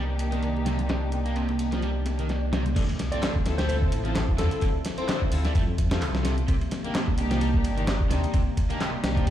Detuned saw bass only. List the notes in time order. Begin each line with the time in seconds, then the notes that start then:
Already playing: C2
2.76 D2
3.46 D2
3.92 A1
4.39 F2
4.62 D2
5.32 D2
5.55 F2
6.01 C2
6.49 C2
7.18 C2
7.65 G1
8.11 D#2
8.34 C2
9.04 C2